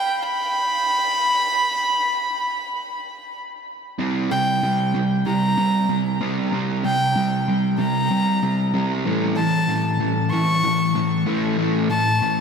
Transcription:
Already playing: G5
0.23 B5
3.99 C3 G3 C4
4.31 C3 G3 G5
4.63 C3 G3
4.94 C3 G3
5.26 C3 G3 A#5
5.57 C3 G3
5.89 C3 G3
6.21 C3 G3 C4
6.52 C3 G3 C4
6.84 C3 G3 G5
7.16 C3 G3
7.48 C3 G3
7.78 C3 G3 A#5
8.11 C3 G3
8.43 C3 G3
8.74 C3 G3 C4
9.06 A2 E3 A3
9.36 A2 E3 A5
9.68 A2 E3
10.00 A2 E3
10.30 A2 E3 C#6
10.63 A2 E3
10.95 A2 E3
11.26 A2 E3 A3
11.58 A2 E3 A3
11.90 A2 E3 A5
12.22 A2 E3

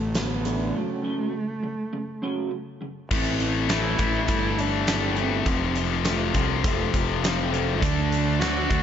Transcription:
Already playing: A1 D3 A3
0.15 D3 A3 B3, snare, closed hi-hat
0.45 D3 A3 D4, closed hi-hat
0.74 F#2 C#3 F#3 A3
1.03 F#2 C#3 F#3
1.33 F#2 C#3
1.63 F#2 C#3
1.93 F#2 C#3
2.22 F#2 C#3 F#3
2.51 F#2 C#3
2.81 F#2 C#3
3.11 A1 A2 E3 A3 C4, kick, crash
3.40 E3, closed hi-hat
3.68 A2 E3 A3 E4, snare, closed hi-hat
3.99 A1 A2 E3 A3 E4, kick, closed hi-hat
4.27 G1 A2 E3 A3 E4, kick, closed hi-hat
4.59 D4 E4, closed hi-hat
4.87 A2 E3 A3 C4, snare, closed hi-hat
5.16 A2 E3 A3 C4, closed hi-hat
5.46 F1 F2 C3 F3, kick, closed hi-hat
5.75 F3, closed hi-hat
6.04 F2 C3 F3 A3, snare, closed hi-hat
6.34 C2 F2 C3 F3 F4, kick, closed hi-hat
6.64 F1 F2 C3 F3 A3, kick, closed hi-hat
6.94 F1 F4, kick, closed hi-hat
7.23 F2 C3 F3 C4, snare, closed hi-hat
7.51 F2 C3 F3 A3, closed hi-hat
7.80 D2 D3 A3 D4, kick, closed hi-hat
8.12 closed hi-hat
8.39 D3 A3 D4 F#4, snare, closed hi-hat
8.70 D2 D3 A3 D4, kick, closed hi-hat

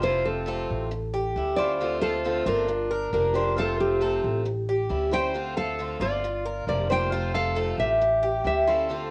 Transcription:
Already playing: F1
0.02 C3 A3 C4 E4 F4 C5
0.25 C4 A4
0.46 C3 A3 C4 F4 A4
0.70 A1
0.91 muted steel-string acoustic guitar stroke
1.14 G4
1.36 D2 E3 G3 C#4 E4
1.56 G3 C#4 E4 F4 C5 D5
1.80 D3 A3 C4 F4
2.01 F4 A4 C5
2.24 D3 A3 C4 F4
2.46 G1 D4 F4 A#4
2.68 muted steel-string acoustic guitar stroke
2.91 A#4
3.13 F1 F3 A#3 D4 G4 A#4
3.34 F3 A#3 D4 G4 C5
3.56 C3 A3 C4 F4 A4
3.79 C4 G4
4.01 C3 A3 C4 F4 A4
4.24 A1
4.45 muted steel-string acoustic guitar stroke
4.69 G4
4.89 D2 E3 G3 C#4 E4
5.11 G3 C#4 E4 C5 G5
5.34 D3 A3 C4 F4
5.56 A4 F5
5.79 D3 A3 C4 F4
6.00 G1 F4 D5
6.24 muted steel-string acoustic guitar stroke
6.45 A#4
6.67 F1 F3 A#3 D4 F4 G4 D5
6.90 F3 A#3 D4 G4 C5 G5
7.12 C3 A3 C4 F4
7.34 A4 F5
7.55 C3 A3 C4 F4 A4
7.78 A1 G4 E5
8.01 muted steel-string acoustic guitar stroke
8.23 G4
8.44 D2 E3 G3 C#4 E4 G4 E5
8.67 G3 C#4 E4 A4 C5 F5
8.89 D3 A3 C4 F4

